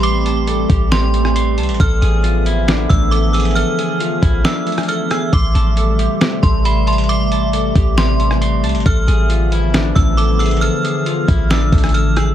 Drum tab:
HH |x---x---x---x---x---x---x---xxxx|x---x---x---x---x---x---x---xxxx|x---x---x---x---x---xxxxx---x---|x---x---x---x---x---x---x---xxxx|
SD |----------------o-----r---------|----------------o---------------|----------------o-----r-----r---|----------------o---------------|
BD |------------o-------------------|o-------------------o-----------|------------o-------------------|o-------------------o-----------|

HH |x---x---x---x---x---x---x---xxxx|x---x---x---x---x---x---x---xxxx|x---x---x---x---x---xxxxx---x---|
SD |----------------o-----r---------|----------------o---------------|----------------o-----r-----r---|
BD |------------o-------------------|o-------------------o-----------|------------o-------o-----------|